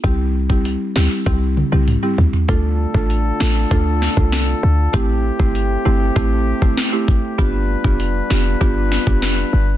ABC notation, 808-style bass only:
X:1
M:4/4
L:1/16
Q:1/4=98
K:Ddor
V:1 name="808-style bass" clef=bass
C,,4- C,, z D,, z C,,3 C,,2 z D,, z | D,,3 A,,,3 A,,,2 D,,3 C,,3 D,,2 | A,,,3 G,,,3 G,,,2 A,,,3 G,,, z4 | G,,,3 F,,,3 F,,,2 G,,,3 F,,,3 G,,,2 |]